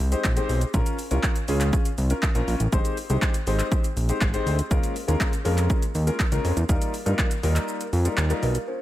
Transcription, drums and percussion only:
0.00 open hi-hat, shaker
0.12 closed hi-hat, shaker
0.24 kick, clap, shaker
0.37 closed hi-hat, shaker
0.49 open hi-hat, shaker
0.61 closed hi-hat, shaker
0.74 kick, shaker
0.86 closed hi-hat, shaker
0.99 open hi-hat, shaker
1.11 closed hi-hat, shaker
1.23 kick, clap, shaker
1.36 closed hi-hat, shaker
1.48 open hi-hat, shaker
1.61 clap, closed hi-hat, shaker
1.73 kick, shaker
1.85 closed hi-hat, shaker
1.98 open hi-hat, shaker
2.10 closed hi-hat, shaker
2.23 kick, clap, shaker
2.35 closed hi-hat, shaker
2.48 open hi-hat, shaker
2.60 closed hi-hat, shaker
2.73 kick, shaker
2.85 closed hi-hat, shaker
2.97 open hi-hat, shaker
3.10 closed hi-hat, shaker
3.22 kick, clap, shaker
3.34 closed hi-hat, shaker
3.47 open hi-hat, shaker
3.59 clap, closed hi-hat, shaker
3.72 kick, shaker
3.84 closed hi-hat, shaker
3.97 open hi-hat, shaker
4.09 closed hi-hat, shaker
4.21 kick, clap, shaker
4.34 closed hi-hat, shaker
4.47 open hi-hat, shaker
4.59 closed hi-hat, shaker
4.71 kick, shaker
4.83 closed hi-hat, shaker
4.96 open hi-hat, shaker
5.08 closed hi-hat, shaker
5.20 kick, clap, shaker
5.33 closed hi-hat, shaker
5.45 open hi-hat, shaker
5.58 clap, closed hi-hat, shaker
5.70 kick, shaker
5.82 closed hi-hat, shaker
5.95 open hi-hat, shaker
6.07 closed hi-hat, shaker
6.20 kick, clap, shaker
6.32 closed hi-hat, shaker
6.45 open hi-hat, shaker
6.57 closed hi-hat, shaker
6.69 kick, shaker
6.82 closed hi-hat, shaker
6.94 open hi-hat, shaker
7.06 closed hi-hat, shaker
7.19 kick, clap, shaker
7.31 closed hi-hat, shaker
7.43 open hi-hat, shaker
7.56 clap, closed hi-hat, shaker
7.68 shaker
7.81 closed hi-hat, shaker
7.93 open hi-hat, shaker
8.05 closed hi-hat, shaker
8.18 clap, shaker
8.30 closed hi-hat, shaker
8.43 open hi-hat, shaker
8.55 closed hi-hat, shaker

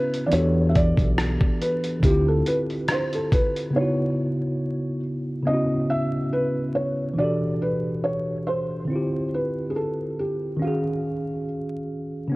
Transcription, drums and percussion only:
0.14 closed hi-hat
0.32 closed hi-hat
0.75 kick, closed hi-hat
0.98 kick, closed hi-hat
1.18 cross-stick, closed hi-hat
1.41 kick
1.62 closed hi-hat
1.84 closed hi-hat
2.03 kick, closed hi-hat
2.46 closed hi-hat
2.70 closed hi-hat
2.88 cross-stick, closed hi-hat
3.13 closed hi-hat
3.32 kick, closed hi-hat
3.56 closed hi-hat

